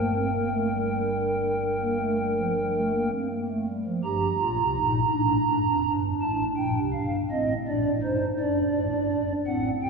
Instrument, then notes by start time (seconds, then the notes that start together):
pipe organ
Already playing: G1 G2 A#3 A#4 G5
0.14 C4
0.32 A#3
0.51 A3
0.70 G3
1.81 A#3
1.99 A3
2.19 G3
2.38 F3
2.57 G3
2.75 A3
2.93 A#3
3.12 C4
3.31 A#3
3.49 A3
3.67 G3
3.85 F3
4.04 G1 G2 G4 A#5
4.40 A#1 A#2 F4
4.59 C2 C3
4.77 A#1 A#2 D#4
5.13 A1 A2 D4
5.50 G1 G2
5.68 F1 F2
5.85 G1 G2
6.21 A1 A2 A5
6.56 A#1 A#2 G5
6.75 C2 C3
6.93 G1 G2 F5
7.30 A1 A2 C4 D#5
7.67 A#1 A#2 D4 D5
7.85 A1 A2
8.02 G1 G2 D#4 C5
8.39 F#1 F#2 D4 D5
8.74 A1 A2
8.93 G1 G2
9.11 F#1 F#2
9.47 A1 A2 C4 F#5
9.83 C2 C3 G5